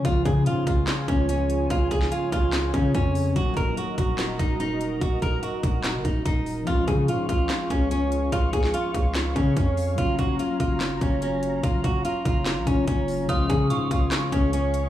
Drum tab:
HH |x-x-x-x-x-x-x-x-|x-x-x-x-x-x-x-o-|x-x-x-x-x-x-x-x-|x-x-x-x-x-x-x-o-|
CP |--------x-------|--------x-------|--------x-------|--------x-------|
SD |--------o-------|---o----o-------|--------o-------|--------o-------|
BD |o-o---o---o-----|o-o---o---o-o---|o-o---o---o-----|o-o---o---o-o---|

HH |x-x-x-x-x-x-x-x-|x-x-x-x-x-x-x-o-|x-x-x-x-x-x-x-x-|x-x-x-x-x-x-x-o-|
CP |--------x-------|--------x-------|--------x-------|--------x-------|
SD |--------o-------|---o----o-------|--------o-------|--------o-------|
BD |o-o---o---o-----|o-o---o---o-o---|o-o---o---o-----|o-o---o---o-o---|

HH |x-x-x-x-x-x-x-x-|
CP |--------x-------|
SD |--------o-------|
BD |o-o---o---o-----|